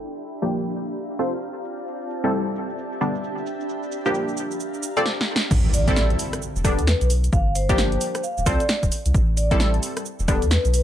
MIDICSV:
0, 0, Header, 1, 7, 480
1, 0, Start_track
1, 0, Key_signature, 0, "minor"
1, 0, Tempo, 454545
1, 57, Time_signature, 4, 2, 24, 8
1, 11438, End_track
2, 0, Start_track
2, 0, Title_t, "Vibraphone"
2, 0, Program_c, 0, 11
2, 6056, Note_on_c, 0, 74, 86
2, 6151, Note_off_c, 0, 74, 0
2, 7016, Note_on_c, 0, 69, 93
2, 7218, Note_off_c, 0, 69, 0
2, 7258, Note_on_c, 0, 71, 89
2, 7459, Note_off_c, 0, 71, 0
2, 7736, Note_on_c, 0, 77, 95
2, 7938, Note_off_c, 0, 77, 0
2, 7977, Note_on_c, 0, 72, 87
2, 8660, Note_off_c, 0, 72, 0
2, 8697, Note_on_c, 0, 77, 90
2, 8919, Note_off_c, 0, 77, 0
2, 8938, Note_on_c, 0, 74, 89
2, 9032, Note_off_c, 0, 74, 0
2, 9086, Note_on_c, 0, 74, 78
2, 9145, Note_off_c, 0, 74, 0
2, 9896, Note_on_c, 0, 74, 91
2, 9991, Note_off_c, 0, 74, 0
2, 10043, Note_on_c, 0, 74, 76
2, 10103, Note_off_c, 0, 74, 0
2, 10859, Note_on_c, 0, 69, 98
2, 11059, Note_off_c, 0, 69, 0
2, 11098, Note_on_c, 0, 71, 91
2, 11299, Note_off_c, 0, 71, 0
2, 11337, Note_on_c, 0, 71, 95
2, 11438, Note_off_c, 0, 71, 0
2, 11438, End_track
3, 0, Start_track
3, 0, Title_t, "Ambient pad"
3, 0, Program_c, 1, 92
3, 0, Note_on_c, 1, 62, 72
3, 0, Note_on_c, 1, 67, 68
3, 499, Note_on_c, 1, 77, 67
3, 1019, Note_on_c, 1, 60, 83
3, 1268, Note_on_c, 1, 65, 69
3, 1329, Note_on_c, 1, 74, 80
3, 1423, Note_off_c, 1, 77, 0
3, 1424, Note_off_c, 1, 62, 0
3, 1425, Note_off_c, 1, 67, 0
3, 1461, Note_on_c, 1, 81, 74
3, 1978, Note_off_c, 1, 65, 0
3, 2183, Note_on_c, 1, 67, 74
3, 2383, Note_off_c, 1, 74, 0
3, 2422, Note_on_c, 1, 76, 75
3, 2936, Note_on_c, 1, 62, 74
3, 2938, Note_off_c, 1, 60, 0
3, 3343, Note_off_c, 1, 81, 0
3, 3898, Note_off_c, 1, 76, 0
3, 4237, Note_on_c, 1, 77, 84
3, 5264, Note_off_c, 1, 67, 0
3, 5336, Note_off_c, 1, 77, 0
3, 5337, Note_off_c, 1, 62, 0
3, 11438, End_track
4, 0, Start_track
4, 0, Title_t, "Synth stab"
4, 0, Program_c, 2, 62
4, 444, Note_on_c, 2, 53, 94
4, 444, Note_on_c, 2, 62, 86
4, 444, Note_on_c, 2, 67, 101
4, 445, Note_on_c, 2, 58, 86
4, 1006, Note_off_c, 2, 53, 0
4, 1006, Note_off_c, 2, 58, 0
4, 1006, Note_off_c, 2, 62, 0
4, 1006, Note_off_c, 2, 67, 0
4, 1257, Note_on_c, 2, 60, 85
4, 1257, Note_on_c, 2, 65, 73
4, 1257, Note_on_c, 2, 69, 72
4, 1257, Note_on_c, 2, 72, 89
4, 1410, Note_off_c, 2, 60, 0
4, 1410, Note_off_c, 2, 65, 0
4, 1410, Note_off_c, 2, 69, 0
4, 1410, Note_off_c, 2, 72, 0
4, 2364, Note_on_c, 2, 55, 92
4, 2364, Note_on_c, 2, 60, 85
4, 2364, Note_on_c, 2, 64, 86
4, 2364, Note_on_c, 2, 69, 101
4, 2926, Note_off_c, 2, 55, 0
4, 2926, Note_off_c, 2, 60, 0
4, 2926, Note_off_c, 2, 64, 0
4, 2926, Note_off_c, 2, 69, 0
4, 3178, Note_on_c, 2, 50, 80
4, 3178, Note_on_c, 2, 55, 74
4, 3178, Note_on_c, 2, 59, 72
4, 3178, Note_on_c, 2, 62, 87
4, 3330, Note_off_c, 2, 50, 0
4, 3330, Note_off_c, 2, 55, 0
4, 3330, Note_off_c, 2, 59, 0
4, 3330, Note_off_c, 2, 62, 0
4, 4285, Note_on_c, 2, 53, 94
4, 4285, Note_on_c, 2, 58, 86
4, 4285, Note_on_c, 2, 62, 82
4, 4285, Note_on_c, 2, 67, 108
4, 4846, Note_off_c, 2, 53, 0
4, 4846, Note_off_c, 2, 58, 0
4, 4846, Note_off_c, 2, 62, 0
4, 4846, Note_off_c, 2, 67, 0
4, 5245, Note_on_c, 2, 60, 99
4, 5245, Note_on_c, 2, 65, 93
4, 5245, Note_on_c, 2, 69, 93
4, 5245, Note_on_c, 2, 74, 112
4, 5306, Note_off_c, 2, 60, 0
4, 5306, Note_off_c, 2, 65, 0
4, 5306, Note_off_c, 2, 69, 0
4, 5306, Note_off_c, 2, 74, 0
4, 6205, Note_on_c, 2, 55, 94
4, 6205, Note_on_c, 2, 60, 90
4, 6205, Note_on_c, 2, 64, 88
4, 6205, Note_on_c, 2, 69, 109
4, 6766, Note_off_c, 2, 69, 0
4, 6767, Note_off_c, 2, 55, 0
4, 6767, Note_off_c, 2, 60, 0
4, 6767, Note_off_c, 2, 64, 0
4, 7017, Note_on_c, 2, 50, 85
4, 7018, Note_on_c, 2, 55, 77
4, 7018, Note_on_c, 2, 59, 75
4, 7018, Note_on_c, 2, 62, 89
4, 7170, Note_off_c, 2, 50, 0
4, 7170, Note_off_c, 2, 55, 0
4, 7170, Note_off_c, 2, 59, 0
4, 7170, Note_off_c, 2, 62, 0
4, 8125, Note_on_c, 2, 53, 92
4, 8125, Note_on_c, 2, 58, 87
4, 8125, Note_on_c, 2, 62, 88
4, 8125, Note_on_c, 2, 67, 108
4, 8686, Note_off_c, 2, 53, 0
4, 8686, Note_off_c, 2, 62, 0
4, 8687, Note_off_c, 2, 58, 0
4, 8687, Note_off_c, 2, 67, 0
4, 8937, Note_on_c, 2, 60, 89
4, 8937, Note_on_c, 2, 65, 74
4, 8937, Note_on_c, 2, 69, 76
4, 8937, Note_on_c, 2, 72, 93
4, 9090, Note_off_c, 2, 60, 0
4, 9090, Note_off_c, 2, 65, 0
4, 9090, Note_off_c, 2, 69, 0
4, 9090, Note_off_c, 2, 72, 0
4, 10044, Note_on_c, 2, 55, 95
4, 10044, Note_on_c, 2, 60, 87
4, 10044, Note_on_c, 2, 64, 88
4, 10045, Note_on_c, 2, 69, 104
4, 10606, Note_off_c, 2, 55, 0
4, 10606, Note_off_c, 2, 60, 0
4, 10606, Note_off_c, 2, 64, 0
4, 10606, Note_off_c, 2, 69, 0
4, 10857, Note_on_c, 2, 50, 88
4, 10857, Note_on_c, 2, 55, 77
4, 10857, Note_on_c, 2, 59, 77
4, 10857, Note_on_c, 2, 62, 90
4, 11009, Note_off_c, 2, 55, 0
4, 11009, Note_off_c, 2, 59, 0
4, 11009, Note_off_c, 2, 62, 0
4, 11010, Note_off_c, 2, 50, 0
4, 11438, End_track
5, 0, Start_track
5, 0, Title_t, "Sub bass"
5, 0, Program_c, 3, 38
5, 5818, Note_on_c, 3, 33, 101
5, 6503, Note_off_c, 3, 33, 0
5, 6924, Note_on_c, 3, 28, 89
5, 7164, Note_on_c, 3, 40, 99
5, 7180, Note_off_c, 3, 28, 0
5, 7335, Note_off_c, 3, 40, 0
5, 7404, Note_on_c, 3, 35, 91
5, 7702, Note_off_c, 3, 35, 0
5, 7737, Note_on_c, 3, 31, 102
5, 8422, Note_off_c, 3, 31, 0
5, 8845, Note_on_c, 3, 26, 90
5, 8916, Note_off_c, 3, 26, 0
5, 8938, Note_on_c, 3, 36, 98
5, 9050, Note_off_c, 3, 36, 0
5, 9324, Note_on_c, 3, 26, 89
5, 9395, Note_off_c, 3, 26, 0
5, 9563, Note_on_c, 3, 36, 99
5, 9635, Note_off_c, 3, 36, 0
5, 9658, Note_on_c, 3, 33, 102
5, 10342, Note_off_c, 3, 33, 0
5, 10765, Note_on_c, 3, 28, 93
5, 11004, Note_on_c, 3, 40, 100
5, 11020, Note_off_c, 3, 28, 0
5, 11175, Note_off_c, 3, 40, 0
5, 11246, Note_on_c, 3, 35, 94
5, 11438, Note_off_c, 3, 35, 0
5, 11438, End_track
6, 0, Start_track
6, 0, Title_t, "Impact"
6, 0, Program_c, 4, 103
6, 5818, Note_on_c, 4, 60, 73
6, 7738, Note_off_c, 4, 60, 0
6, 11438, End_track
7, 0, Start_track
7, 0, Title_t, "Drums"
7, 58, Note_on_c, 9, 82, 40
7, 163, Note_off_c, 9, 82, 0
7, 205, Note_on_c, 9, 82, 20
7, 298, Note_off_c, 9, 82, 0
7, 298, Note_on_c, 9, 82, 67
7, 404, Note_off_c, 9, 82, 0
7, 445, Note_on_c, 9, 82, 28
7, 538, Note_off_c, 9, 82, 0
7, 538, Note_on_c, 9, 82, 38
7, 643, Note_off_c, 9, 82, 0
7, 684, Note_on_c, 9, 82, 20
7, 778, Note_off_c, 9, 82, 0
7, 778, Note_on_c, 9, 82, 67
7, 883, Note_off_c, 9, 82, 0
7, 925, Note_on_c, 9, 82, 28
7, 1019, Note_off_c, 9, 82, 0
7, 1019, Note_on_c, 9, 82, 41
7, 1124, Note_off_c, 9, 82, 0
7, 1166, Note_on_c, 9, 82, 20
7, 1258, Note_off_c, 9, 82, 0
7, 1258, Note_on_c, 9, 82, 69
7, 1364, Note_off_c, 9, 82, 0
7, 1406, Note_on_c, 9, 82, 28
7, 1499, Note_off_c, 9, 82, 0
7, 1499, Note_on_c, 9, 82, 38
7, 1604, Note_off_c, 9, 82, 0
7, 1646, Note_on_c, 9, 82, 19
7, 1738, Note_off_c, 9, 82, 0
7, 1738, Note_on_c, 9, 82, 70
7, 1844, Note_off_c, 9, 82, 0
7, 1886, Note_on_c, 9, 82, 28
7, 1980, Note_off_c, 9, 82, 0
7, 1980, Note_on_c, 9, 82, 39
7, 2085, Note_off_c, 9, 82, 0
7, 2127, Note_on_c, 9, 82, 21
7, 2219, Note_off_c, 9, 82, 0
7, 2219, Note_on_c, 9, 82, 73
7, 2325, Note_off_c, 9, 82, 0
7, 2367, Note_on_c, 9, 82, 29
7, 2460, Note_off_c, 9, 82, 0
7, 2460, Note_on_c, 9, 82, 41
7, 2566, Note_off_c, 9, 82, 0
7, 2607, Note_on_c, 9, 82, 20
7, 2700, Note_off_c, 9, 82, 0
7, 2700, Note_on_c, 9, 82, 67
7, 2806, Note_off_c, 9, 82, 0
7, 2847, Note_on_c, 9, 82, 30
7, 2939, Note_off_c, 9, 82, 0
7, 2939, Note_on_c, 9, 82, 42
7, 3045, Note_off_c, 9, 82, 0
7, 3086, Note_on_c, 9, 82, 20
7, 3179, Note_off_c, 9, 82, 0
7, 3179, Note_on_c, 9, 82, 66
7, 3284, Note_off_c, 9, 82, 0
7, 3326, Note_on_c, 9, 82, 28
7, 3419, Note_off_c, 9, 82, 0
7, 3419, Note_on_c, 9, 82, 41
7, 3525, Note_off_c, 9, 82, 0
7, 3566, Note_on_c, 9, 82, 20
7, 3659, Note_off_c, 9, 82, 0
7, 3659, Note_on_c, 9, 82, 71
7, 3764, Note_off_c, 9, 82, 0
7, 3806, Note_on_c, 9, 82, 29
7, 3899, Note_off_c, 9, 82, 0
7, 3899, Note_on_c, 9, 82, 39
7, 4004, Note_off_c, 9, 82, 0
7, 4045, Note_on_c, 9, 82, 21
7, 4138, Note_off_c, 9, 82, 0
7, 4138, Note_on_c, 9, 82, 74
7, 4243, Note_off_c, 9, 82, 0
7, 4285, Note_on_c, 9, 82, 31
7, 4377, Note_off_c, 9, 82, 0
7, 4377, Note_on_c, 9, 82, 43
7, 4483, Note_off_c, 9, 82, 0
7, 4525, Note_on_c, 9, 82, 21
7, 4617, Note_off_c, 9, 82, 0
7, 4617, Note_on_c, 9, 82, 67
7, 4723, Note_off_c, 9, 82, 0
7, 4765, Note_on_c, 9, 82, 31
7, 4858, Note_off_c, 9, 82, 0
7, 4858, Note_on_c, 9, 82, 44
7, 4964, Note_off_c, 9, 82, 0
7, 5006, Note_on_c, 9, 82, 21
7, 5099, Note_off_c, 9, 82, 0
7, 5099, Note_on_c, 9, 82, 75
7, 5204, Note_off_c, 9, 82, 0
7, 5246, Note_on_c, 9, 82, 29
7, 5339, Note_on_c, 9, 38, 64
7, 5351, Note_off_c, 9, 82, 0
7, 5445, Note_off_c, 9, 38, 0
7, 5499, Note_on_c, 9, 38, 75
7, 5605, Note_off_c, 9, 38, 0
7, 5659, Note_on_c, 9, 38, 94
7, 5764, Note_off_c, 9, 38, 0
7, 5818, Note_on_c, 9, 36, 122
7, 5819, Note_on_c, 9, 49, 104
7, 5819, Note_on_c, 9, 82, 42
7, 5924, Note_off_c, 9, 36, 0
7, 5925, Note_off_c, 9, 49, 0
7, 5925, Note_off_c, 9, 82, 0
7, 6058, Note_on_c, 9, 46, 118
7, 6058, Note_on_c, 9, 82, 77
7, 6164, Note_off_c, 9, 46, 0
7, 6164, Note_off_c, 9, 82, 0
7, 6205, Note_on_c, 9, 36, 104
7, 6206, Note_on_c, 9, 42, 69
7, 6206, Note_on_c, 9, 82, 31
7, 6299, Note_off_c, 9, 82, 0
7, 6299, Note_on_c, 9, 38, 124
7, 6299, Note_on_c, 9, 82, 42
7, 6311, Note_off_c, 9, 36, 0
7, 6312, Note_off_c, 9, 42, 0
7, 6404, Note_off_c, 9, 38, 0
7, 6404, Note_off_c, 9, 82, 0
7, 6446, Note_on_c, 9, 42, 37
7, 6539, Note_on_c, 9, 46, 110
7, 6539, Note_on_c, 9, 82, 69
7, 6551, Note_off_c, 9, 42, 0
7, 6645, Note_off_c, 9, 46, 0
7, 6645, Note_off_c, 9, 82, 0
7, 6686, Note_on_c, 9, 37, 72
7, 6686, Note_on_c, 9, 42, 69
7, 6686, Note_on_c, 9, 82, 29
7, 6779, Note_off_c, 9, 82, 0
7, 6779, Note_on_c, 9, 82, 44
7, 6792, Note_off_c, 9, 37, 0
7, 6792, Note_off_c, 9, 42, 0
7, 6885, Note_off_c, 9, 82, 0
7, 6927, Note_on_c, 9, 82, 30
7, 7018, Note_on_c, 9, 36, 98
7, 7019, Note_off_c, 9, 82, 0
7, 7019, Note_on_c, 9, 37, 73
7, 7019, Note_on_c, 9, 46, 111
7, 7019, Note_on_c, 9, 82, 72
7, 7123, Note_off_c, 9, 36, 0
7, 7125, Note_off_c, 9, 37, 0
7, 7125, Note_off_c, 9, 46, 0
7, 7125, Note_off_c, 9, 82, 0
7, 7166, Note_on_c, 9, 42, 66
7, 7166, Note_on_c, 9, 82, 30
7, 7259, Note_off_c, 9, 82, 0
7, 7259, Note_on_c, 9, 38, 127
7, 7259, Note_on_c, 9, 82, 42
7, 7272, Note_off_c, 9, 42, 0
7, 7365, Note_off_c, 9, 38, 0
7, 7365, Note_off_c, 9, 82, 0
7, 7406, Note_on_c, 9, 42, 54
7, 7406, Note_on_c, 9, 82, 28
7, 7498, Note_off_c, 9, 82, 0
7, 7498, Note_on_c, 9, 46, 116
7, 7498, Note_on_c, 9, 82, 73
7, 7512, Note_off_c, 9, 42, 0
7, 7604, Note_off_c, 9, 46, 0
7, 7604, Note_off_c, 9, 82, 0
7, 7646, Note_on_c, 9, 42, 67
7, 7646, Note_on_c, 9, 82, 31
7, 7737, Note_on_c, 9, 36, 127
7, 7738, Note_off_c, 9, 82, 0
7, 7738, Note_on_c, 9, 82, 41
7, 7751, Note_off_c, 9, 42, 0
7, 7843, Note_off_c, 9, 36, 0
7, 7843, Note_off_c, 9, 82, 0
7, 7977, Note_on_c, 9, 46, 106
7, 7977, Note_on_c, 9, 82, 71
7, 8083, Note_off_c, 9, 46, 0
7, 8083, Note_off_c, 9, 82, 0
7, 8124, Note_on_c, 9, 36, 105
7, 8125, Note_on_c, 9, 42, 64
7, 8125, Note_on_c, 9, 82, 32
7, 8219, Note_off_c, 9, 82, 0
7, 8219, Note_on_c, 9, 38, 123
7, 8219, Note_on_c, 9, 82, 42
7, 8230, Note_off_c, 9, 36, 0
7, 8231, Note_off_c, 9, 42, 0
7, 8324, Note_off_c, 9, 38, 0
7, 8324, Note_off_c, 9, 82, 0
7, 8365, Note_on_c, 9, 42, 36
7, 8459, Note_on_c, 9, 46, 108
7, 8459, Note_on_c, 9, 82, 72
7, 8471, Note_off_c, 9, 42, 0
7, 8564, Note_off_c, 9, 46, 0
7, 8564, Note_off_c, 9, 82, 0
7, 8605, Note_on_c, 9, 37, 74
7, 8605, Note_on_c, 9, 42, 64
7, 8605, Note_on_c, 9, 82, 31
7, 8698, Note_off_c, 9, 82, 0
7, 8698, Note_on_c, 9, 82, 44
7, 8711, Note_off_c, 9, 37, 0
7, 8711, Note_off_c, 9, 42, 0
7, 8803, Note_off_c, 9, 82, 0
7, 8845, Note_on_c, 9, 82, 29
7, 8937, Note_off_c, 9, 82, 0
7, 8937, Note_on_c, 9, 36, 104
7, 8937, Note_on_c, 9, 37, 72
7, 8937, Note_on_c, 9, 46, 108
7, 8937, Note_on_c, 9, 82, 76
7, 9043, Note_off_c, 9, 36, 0
7, 9043, Note_off_c, 9, 37, 0
7, 9043, Note_off_c, 9, 46, 0
7, 9043, Note_off_c, 9, 82, 0
7, 9085, Note_on_c, 9, 42, 64
7, 9085, Note_on_c, 9, 82, 30
7, 9177, Note_off_c, 9, 82, 0
7, 9177, Note_on_c, 9, 38, 127
7, 9177, Note_on_c, 9, 82, 40
7, 9190, Note_off_c, 9, 42, 0
7, 9282, Note_off_c, 9, 38, 0
7, 9282, Note_off_c, 9, 82, 0
7, 9324, Note_on_c, 9, 36, 60
7, 9324, Note_on_c, 9, 42, 55
7, 9324, Note_on_c, 9, 82, 29
7, 9417, Note_off_c, 9, 82, 0
7, 9417, Note_on_c, 9, 46, 113
7, 9417, Note_on_c, 9, 82, 73
7, 9430, Note_off_c, 9, 36, 0
7, 9430, Note_off_c, 9, 42, 0
7, 9523, Note_off_c, 9, 46, 0
7, 9523, Note_off_c, 9, 82, 0
7, 9564, Note_on_c, 9, 42, 64
7, 9564, Note_on_c, 9, 82, 31
7, 9657, Note_on_c, 9, 36, 127
7, 9658, Note_off_c, 9, 82, 0
7, 9658, Note_on_c, 9, 82, 44
7, 9670, Note_off_c, 9, 42, 0
7, 9763, Note_off_c, 9, 36, 0
7, 9763, Note_off_c, 9, 82, 0
7, 9898, Note_on_c, 9, 46, 103
7, 9898, Note_on_c, 9, 82, 73
7, 10003, Note_off_c, 9, 46, 0
7, 10003, Note_off_c, 9, 82, 0
7, 10044, Note_on_c, 9, 36, 108
7, 10045, Note_on_c, 9, 42, 64
7, 10045, Note_on_c, 9, 82, 31
7, 10137, Note_off_c, 9, 82, 0
7, 10137, Note_on_c, 9, 38, 122
7, 10137, Note_on_c, 9, 82, 40
7, 10150, Note_off_c, 9, 36, 0
7, 10151, Note_off_c, 9, 42, 0
7, 10243, Note_off_c, 9, 38, 0
7, 10243, Note_off_c, 9, 82, 0
7, 10286, Note_on_c, 9, 42, 36
7, 10378, Note_on_c, 9, 46, 102
7, 10378, Note_on_c, 9, 82, 73
7, 10391, Note_off_c, 9, 42, 0
7, 10484, Note_off_c, 9, 46, 0
7, 10484, Note_off_c, 9, 82, 0
7, 10526, Note_on_c, 9, 37, 69
7, 10526, Note_on_c, 9, 42, 63
7, 10526, Note_on_c, 9, 82, 31
7, 10618, Note_off_c, 9, 82, 0
7, 10618, Note_on_c, 9, 82, 45
7, 10631, Note_off_c, 9, 37, 0
7, 10631, Note_off_c, 9, 42, 0
7, 10724, Note_off_c, 9, 82, 0
7, 10766, Note_on_c, 9, 82, 31
7, 10858, Note_on_c, 9, 36, 109
7, 10859, Note_off_c, 9, 82, 0
7, 10859, Note_on_c, 9, 37, 69
7, 10859, Note_on_c, 9, 46, 104
7, 10859, Note_on_c, 9, 82, 75
7, 10963, Note_off_c, 9, 36, 0
7, 10964, Note_off_c, 9, 37, 0
7, 10964, Note_off_c, 9, 46, 0
7, 10964, Note_off_c, 9, 82, 0
7, 11006, Note_on_c, 9, 42, 64
7, 11006, Note_on_c, 9, 82, 32
7, 11099, Note_off_c, 9, 82, 0
7, 11099, Note_on_c, 9, 38, 125
7, 11099, Note_on_c, 9, 82, 42
7, 11111, Note_off_c, 9, 42, 0
7, 11204, Note_off_c, 9, 38, 0
7, 11204, Note_off_c, 9, 82, 0
7, 11246, Note_on_c, 9, 42, 51
7, 11246, Note_on_c, 9, 82, 28
7, 11338, Note_off_c, 9, 82, 0
7, 11338, Note_on_c, 9, 46, 107
7, 11338, Note_on_c, 9, 82, 76
7, 11351, Note_off_c, 9, 42, 0
7, 11438, Note_off_c, 9, 46, 0
7, 11438, Note_off_c, 9, 82, 0
7, 11438, End_track
0, 0, End_of_file